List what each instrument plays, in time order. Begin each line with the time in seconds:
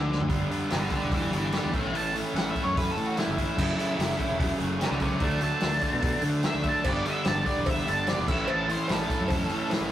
Already playing: fingered electric bass D2, overdriven electric guitar D3
0.12 snare
0.20 floor tom
0.28 fingered electric bass G1, overdriven electric guitar G2 D3 G3 B3 D4, kick, open hi-hat
0.50 overdriven electric guitar G2 D3 G3 B3 D4, open hi-hat
0.70 fingered electric bass G1, overdriven electric guitar G2 D3 G3 B3 D4, lead electric guitar A4 D5, snare, open hi-hat
0.83 snare
0.90 overdriven electric guitar G2 D3 G3 B3 D4, lead electric guitar A4, kick, open hi-hat
0.94 lead electric guitar D5
1.02 fingered electric bass E1
1.11 overdriven electric guitar G2 D3 G3 B3 D4, lead electric guitar B4 E5, kick, open hi-hat
1.32 fingered electric bass G1, overdriven electric guitar G2 D3 G3 B3 D4, open hi-hat
1.37 lead electric guitar B4 E5
1.52 overdriven electric guitar G2 D3 G3 B3 D4, lead electric guitar D5, snare, open hi-hat
1.56 lead electric guitar G5
1.65 fingered electric bass E2
1.72 fingered electric bass A1, overdriven electric guitar A2 E3 A3 C#4 E4, kick, open hi-hat
1.77 lead electric guitar E5 G5
1.92 overdriven electric guitar A2 E3 A3 C#4 E4, open hi-hat
1.97 lead electric guitar A5
2.13 overdriven electric guitar A2 E3 A3 C#4 E4, open hi-hat
2.34 fingered electric bass A1, overdriven electric guitar A2 E3 A3 C#4 E4, lead electric guitar F#5, snare, open hi-hat
2.50 overdriven electric guitar A2 E3, lead electric guitar E5
2.55 overdriven electric guitar A3 C#4 E4, kick, open hi-hat
2.64 fingered electric bass F#2, lead electric guitar C#5
2.75 overdriven electric guitar A2 E3 A3 C#4 E4, lead electric guitar B4, kick, open hi-hat
2.91 lead electric guitar A4
2.95 overdriven electric guitar A2 E3 A3 C#4 E4, fingered electric bass A2, open hi-hat
3.07 lead electric guitar F#4
3.15 overdriven electric guitar A2 E3 A3 C#4 E4, lead electric guitar E4, snare, open hi-hat
3.27 fingered electric bass G1
3.32 overdriven electric guitar A2 E3 A3, lead electric guitar E4
3.37 overdriven electric guitar C#4 E4, kick, open hi-hat
3.55 fingered electric bass F#1, overdriven electric guitar F#2 C#3 F#3 A3 C#4, kick, crash
3.77 overdriven electric guitar F#2 C#3 F#3 A3 C#4, open hi-hat
3.97 fingered electric bass F#1, overdriven electric guitar F#2 C#3 F#3 A3 C#4, snare, open hi-hat
4.12 snare
4.17 overdriven electric guitar F#2 C#3 F#3 A3 C#4, kick, open hi-hat
4.30 fingered electric bass E1
4.38 overdriven electric guitar F#2 C#3 F#3 A3 C#4, kick, open hi-hat
4.59 fingered electric bass F#1, overdriven electric guitar F#2 C#3 F#3 A3 C#4, open hi-hat
4.79 overdriven electric guitar F#2 C#3 F#3 A3 C#4, lead electric guitar A4, snare, open hi-hat
4.84 lead electric guitar D5
4.91 fingered electric bass C#2
4.99 overdriven electric guitar F#2 C#3 F#3 A3 C#4, lead electric guitar C5, kick, open hi-hat
5.03 lead electric guitar E5
5.20 fingered electric bass D2, overdriven electric guitar D3 F#3 A3 D4, lead electric guitar E5, kick, open hi-hat
5.24 lead electric guitar A5
5.40 overdriven electric guitar D3 F#3 A3 D4, lead electric guitar A5, open hi-hat
5.60 fingered electric bass D2, overdriven electric guitar D3 F#3 A3 D4, snare, open hi-hat
5.81 overdriven electric guitar D3 F#3 A3 D4, kick, open hi-hat
5.93 fingered electric bass B2
6.01 overdriven electric guitar D3 F#3 A3 D4, kick, open hi-hat
6.22 fingered electric bass D3, overdriven electric guitar D3 F#3 A3 D4, open hi-hat
6.42 overdriven electric guitar D3 F#3 A3 D4, lead electric guitar E5, snare, open hi-hat
6.54 fingered electric bass D2
6.63 overdriven electric guitar D3 F#3 A3 D4, kick, open hi-hat
6.69 lead electric guitar A5
6.83 fingered electric bass G1, overdriven electric guitar G2 D3 G3 B3 D4, kick, cowbell, crash
6.90 lead electric guitar D5
7.04 overdriven electric guitar G2 D3 G3 B3 D4, lead electric guitar E5, open hi-hat
7.24 fingered electric bass G1, overdriven electric guitar G2 D3 G3 B3 D4, lead electric guitar A5, snare, open hi-hat, cowbell
7.45 overdriven electric guitar G2 D3 G3 B3 D4, lead electric guitar D5, kick, open hi-hat
7.56 fingered electric bass E1
7.66 overdriven electric guitar G2 D3 G3 B3 D4, lead electric guitar E5, kick, open hi-hat, cowbell
7.85 fingered electric bass G1, overdriven electric guitar G2 D3 G3 B3 D4, lead electric guitar A5, open hi-hat
8.07 overdriven electric guitar G2 D3 G3 B3 D4, lead electric guitar D5, snare, open hi-hat, cowbell
8.19 fingered electric bass E1
8.27 fingered electric bass A1, overdriven electric guitar A2 E3 A3 C#4 E4, lead electric guitar E5, kick, crash
8.47 overdriven electric guitar A2 E3 A3 C#4 E4, lead electric guitar A5, cowbell
8.68 overdriven electric guitar A2 E3 A3 C#4 E4, lead electric guitar C5, open hi-hat
8.87 fingered electric bass A1, overdriven electric guitar A2 E3 A3 C#4 E4, snare, open hi-hat, cowbell
8.92 lead electric guitar A4
9.01 snare
9.09 overdriven electric guitar A2 E3 A3 C#4 E4, kick, open hi-hat
9.21 fingered electric bass F#2
9.28 overdriven electric guitar A2 E3 A3 C#4 E4, kick, open hi-hat, cowbell
9.50 overdriven electric guitar A2 E3 A3 C#4 E4, fingered electric bass A2, open hi-hat
9.70 overdriven electric guitar A2 E3 A3 C#4 E4, snare, open hi-hat, cowbell
9.81 fingered electric bass A1